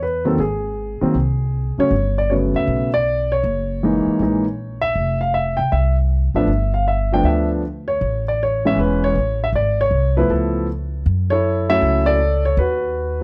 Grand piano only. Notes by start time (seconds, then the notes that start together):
0.03 B4
0.25 D#3 F#3 A#3 C4 A4
0.40 G#4
1.01 D#3 F#3 A#3 C4
1.78 C#3 F#3 A3 C#4 C#5
2.18 D5
2.30 C#3 F#3 A3 B3 C#5
2.56 E5
2.94 D5
3.32 C#5
3.83 E3 G#3 A#3 D#4
4.22 E3 G#3 A#3 D#4
4.81 E5
5.21 F5
5.34 E5
5.57 G5
5.72 E5
6.35 F3 A3 B3 D4 E5
6.74 F5
6.88 E5
7.12 F3 A3 B3 D4 G5
7.25 E5
7.88 C#5
8.28 D5
8.43 C#5
8.65 E3 G#3 B3 C#4 E5
8.79 B4
9.04 C#5
9.44 E5
9.56 D5
9.81 C#5
10.17 F3 A3 B3 E4 B4
10.30 A4
11.30 E4 A4 C#5
11.69 F#3 A3 C#4 E4 A4 C#5 E5
12.06 A4 D5
12.45 C#5
12.58 F#4 B4